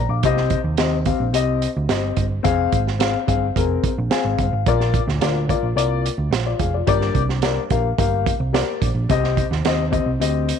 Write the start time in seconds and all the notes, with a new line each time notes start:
0.09 A#1 F5 D6
0.23 C2 C3 C4 G4 D#5, kick, closed hi-hat
0.37 snare
0.50 kick, closed hi-hat
0.64 D#2
0.77 C4 G4 D#5, snare, closed hi-hat
1.05 C4 G4 F5, kick, closed hi-hat
1.20 A#1
1.33 C2 C4 G4 D#5, closed hi-hat
1.62 closed hi-hat
1.76 D2
1.88 G1 C4 G4 D#5, snare, closed hi-hat
2.16 G1, kick, closed hi-hat
2.43 F1 C4 G#4 F5, kick, closed hi-hat
2.72 G#1, kick, closed hi-hat
2.87 snare
2.99 C4 G#4 F5, snare, closed hi-hat
3.27 G1 C4 G#4 F5, kick, closed hi-hat
3.56 F1 C4 G#4 A#4, kick, closed hi-hat
3.83 muted picked electric bass stroke, kick, closed hi-hat
3.98 A#1
4.10 C4 G#4 F5 G#5, snare, closed hi-hat
4.24 G#1
4.38 G1 F5, kick, closed hi-hat
4.53 G#1
4.66 A#1 A#2 A#3 F4 D5, kick, closed hi-hat
4.80 snare
4.94 kick, closed hi-hat
5.07 D2, snare
5.20 D2 A#3 F4 D5, snare, closed hi-hat
5.48 A#3 F4 D5, kick, closed hi-hat
5.63 A#1
5.75 C2 A#3 F4 D5, closed hi-hat
6.06 closed hi-hat
6.18 D2
6.31 A#1, snare, closed hi-hat
6.46 F4 D5
6.59 F1 G#4 F5, kick, closed hi-hat
6.74 F4 D5
6.87 G1 G2 A#3 G4 D5, kick, closed hi-hat
7.01 snare
7.15 C2, kick, closed hi-hat
7.29 snare
7.42 A#3 G4 D5, snare, closed hi-hat
7.70 A#1 A#3 G4 F5, kick, closed hi-hat
7.98 G1 A#3 G4 F5, kick, closed hi-hat
8.26 kick, closed hi-hat
8.40 C2
8.53 A#3 G4 D5, snare, closed hi-hat
8.82 A#1, kick, closed hi-hat
8.95 A#1
9.09 C2 C3 C4 G4 D#5, kick, closed hi-hat
9.24 snare
9.37 kick, closed hi-hat
9.51 D#2, snare
9.65 C4 G4 D#5, snare, closed hi-hat
9.90 C4 G4 D#5, kick, closed hi-hat
10.06 C2
10.20 D2 C4 G4 D#5, closed hi-hat
10.49 closed hi-hat